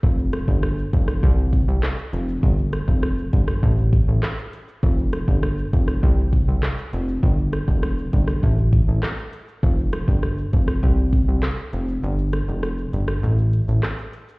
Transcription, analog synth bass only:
\new Staff \with { instrumentName = "Analog synth bass" } { \clef bass \time 4/4 \key f \mixolydian \tempo 4 = 100 f,,8. g,,8. f,,8 c,8. c,16 r8 f,,8 | g,,8. f,,8. g,,8 a,,8. a,,16 r4 | f,,8. g,,8. f,,8 c,8. c,16 r8 f,,8 | g,,8. f,,8. g,,8 a,,8. a,,16 r4 |
f,,8. g,,8. f,,8 c,8. c,16 r8 f,,8 | g,,8. f,,8. g,,8 a,,8. a,,16 r4 | }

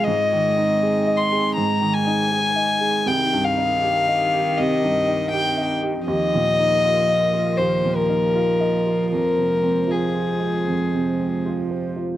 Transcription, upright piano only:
\new Staff \with { instrumentName = "Upright piano" } { \time 4/4 \key ees \major \tempo 4 = 80 \tuplet 3/2 { aes,8 ees8 ees'8 aes'8 ees''8 aes'8 aes,8 ees8 ees'8 aes'8 ees''8 aes'8 } | \tuplet 3/2 { c,8 g,8 ees'8 g'8 ees''8 g'8 c,8 g,8 ees'8 g'8 ees''8 g'8 } | \tuplet 3/2 { ees,8 bes,8 ees'8 f'8 ees''8 f'8 ees,8 bes,8 ees'8 f'8 ees''8 f'8 } | \tuplet 3/2 { f,8 c8 c'8 f'8 c''8 f'8 f,8 c8 c'8 f'8 c''8 f'8 } | }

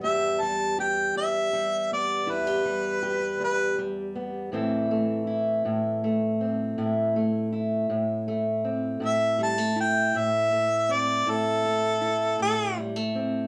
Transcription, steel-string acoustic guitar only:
\new Staff \with { instrumentName = "Steel-string acoustic guitar" } { \time 12/8 \key a \dorian \tempo 4. = 53 << { <g b g'>8 g8 g'4 g8 b8 e'16 g'16 g8 g'4 g8 b8 | <e a c' e'>8 a8 e'4 a8 c'8 e'8 a8 e'4 a8 c'8 | e'8 g16 a16 e'4 a8 c'8 e'8 a8 e'4 g16 a16 c'8 | } \\ { e,4. e,4. e,4. e,4. | a,4. a,4. a,4. a,4. | a,4. a,4. a,4. a,4. | } >> }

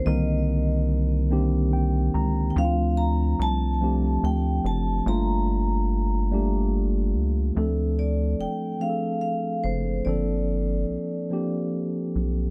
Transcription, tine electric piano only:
\new Staff \with { instrumentName = "Tine electric piano" } { \time 6/8 \key d \phrygian \tempo 4. = 48 << { r2 g''8 bes''8 | r2. | r2. | r2. |
r2. | } \\ { <d ees bes c' bes'>4 r8 <ees bes c' d' g'>4 r8 | <f a c' d' e' f'>4 r8 <f a c' d' g'>4 r8 | <g a bes d' f'>4 r8 <g a bes d' g'>4 r8 | <f a c' d' a'>4 r8 <f a c' d' aes' a'>4 r8 |
<f bes c' d' a'>4 r8 <f bes c' d' g'>4 r8 | } >> }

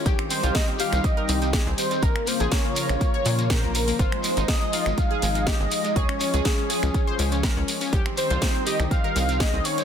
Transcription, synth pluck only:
\new Staff \with { instrumentName = "Synth pluck" } { \time 4/4 \key c \phrygian \tempo 4 = 122 g'16 c'16 c'16 f'16 c'16 c'16 g'16 c'16 c'16 bes'16 c'16 c'16 aes'16 c'16 r16 c'16 | bes'16 bes16 bes16 aes'16 bes16 bes16 bes'16 bes16 bes16 des''16 bes16 bes16 c''16 bes16 r16 bes16 | f'16 aes16 aes16 ees'16 aes16 aes16 f'16 aes16 aes16 aes'16 aes16 aes16 g'16 aes16 r16 aes16 | aes'16 des'16 des'16 aes'16 des'16 des'16 aes'16 des'16 des'16 c''16 des'16 des'16 bes'16 des'16 r16 des'16 |
g'16 c'16 c'16 f'16 c'16 c'16 g'16 c'16 c'16 bes'16 c'16 c'16 aes'16 c'16 r16 c'16 | }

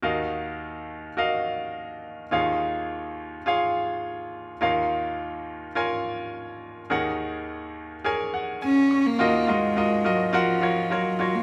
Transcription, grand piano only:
<<
  \new Staff \with { instrumentName = "Grand piano" } { \time 4/4 \key ees \minor \tempo 4 = 105 << { r1 | r1 | r1 | r2 r8 ges''8 aes''8 des'''8 |
r1 | } \\ { <ges' bes' ees'' f''>2 <ges' bes' ees'' f''>2 | <f' aes' des'' f''>2 <f' aes' des'' f''>2 | <f' bes' des'' f''>2 <f' bes' des'' aes''>2 | <aes' bes' des'' ges''>2 <aes' bes' des'' aes''>2 |
<f' ges' bes' ees''>8 <f' ges' bes' ees''>8 <f' ges' bes' ees''>8 <f' ges' bes' ees''>8 <f' ges' bes' ges''>8 <f' ges' bes' des''>8 <f' ges' bes' des''>8 <f' ges' bes' des''>8 | } >> }
  \new Staff \with { instrumentName = "Grand piano" } { \clef bass \time 4/4 \key ees \minor <ees, ees>1 | <ees, ees>1 | <ees, ees>1 | <ees, ees>1 |
<ees, ees>1 | }
>>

